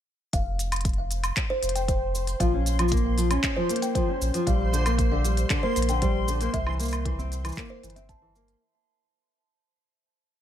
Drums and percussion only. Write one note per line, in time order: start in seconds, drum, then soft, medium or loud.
0.33 kick medium
0.33 closed hi-hat medium
0.33 shaker soft
0.59 closed hi-hat soft
0.59 shaker medium
0.72 closed hi-hat soft
0.72 low woodblock medium
0.72 shaker soft
0.76 closed hi-hat soft
0.81 closed hi-hat soft
0.85 kick loud
0.85 closed hi-hat medium
0.85 shaker soft
0.89 closed hi-hat soft
0.93 closed hi-hat soft
1.11 closed hi-hat soft
1.11 shaker medium
1.24 closed hi-hat soft
1.24 low woodblock medium
1.24 shaker soft
1.37 kick medium
1.37 clap medium
1.37 closed hi-hat soft
1.37 shaker soft
1.63 closed hi-hat soft
1.63 shaker medium
1.69 closed hi-hat medium
1.76 closed hi-hat soft
1.76 shaker soft
1.88 kick loud
1.88 closed hi-hat medium
1.88 shaker soft
2.15 shaker medium
2.27 closed hi-hat soft
2.27 shaker soft
2.40 kick medium
2.40 closed hi-hat medium
2.40 shaker soft
2.66 closed hi-hat soft
2.66 shaker medium
2.79 closed hi-hat soft
2.79 low woodblock medium
2.79 shaker soft
2.88 kick loud
2.88 closed hi-hat medium
2.88 shaker soft
2.92 shaker soft
2.97 shaker soft
3.18 closed hi-hat soft
3.18 shaker medium
3.31 closed hi-hat soft
3.31 low woodblock medium
3.31 shaker soft
3.43 kick loud
3.43 clap medium
3.43 closed hi-hat medium
3.43 shaker soft
3.69 closed hi-hat soft
3.69 shaker medium
3.76 closed hi-hat medium
3.82 closed hi-hat soft
3.82 shaker soft
3.95 kick loud
3.95 closed hi-hat soft
3.95 shaker soft
4.22 shaker medium
4.34 closed hi-hat soft
4.34 shaker soft
4.47 kick loud
4.47 closed hi-hat medium
4.47 shaker soft
4.74 shaker medium
4.86 closed hi-hat soft
4.86 low woodblock medium
4.86 shaker soft
4.98 kick loud
4.98 closed hi-hat medium
4.98 shaker soft
5.25 closed hi-hat soft
5.25 shaker medium
5.37 closed hi-hat soft
5.37 shaker soft
5.50 kick loud
5.50 clap medium
5.50 closed hi-hat soft
5.50 shaker soft
5.76 closed hi-hat soft
5.76 shaker medium
5.82 closed hi-hat soft
5.89 closed hi-hat soft
5.89 shaker soft
6.02 kick loud
6.02 closed hi-hat soft
6.02 shaker soft
6.28 shaker medium
6.41 closed hi-hat soft
6.41 shaker soft
6.54 kick medium
6.54 closed hi-hat medium
6.54 shaker soft
6.67 low woodblock medium
6.80 closed hi-hat soft
6.80 shaker medium
6.83 shaker medium
6.85 shaker medium
6.88 shaker soft
6.91 closed hi-hat soft
6.91 low woodblock medium
6.91 shaker soft
6.93 shaker soft
7.05 kick loud
7.05 closed hi-hat medium
7.19 shaker soft
7.32 closed hi-hat soft
7.32 shaker medium
7.45 closed hi-hat soft
7.45 low woodblock medium
7.45 shaker soft
7.49 shaker soft
7.52 shaker soft
7.57 kick medium
7.57 clap medium
7.57 closed hi-hat soft
7.57 shaker soft
7.68 shaker soft
7.83 closed hi-hat soft
7.83 shaker medium
7.90 closed hi-hat soft
7.96 closed hi-hat soft
7.96 shaker soft
8.09 kick loud
8.09 closed hi-hat soft
8.09 shaker soft
8.36 shaker medium
8.48 closed hi-hat soft
8.48 shaker soft